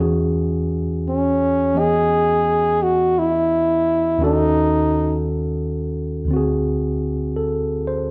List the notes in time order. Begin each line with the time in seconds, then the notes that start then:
0.00 E2 E3 C#4 F#4 G#4
1.09 C#4
1.74 E3 B3 D#5
1.79 G#4
2.83 F#4
3.19 E4
4.18 D#2 D#3 C#4
4.23 D#4 F#4 A4
6.25 D2 D3
6.31 C4 F#4
6.36 G#4
7.36 A4
7.87 C5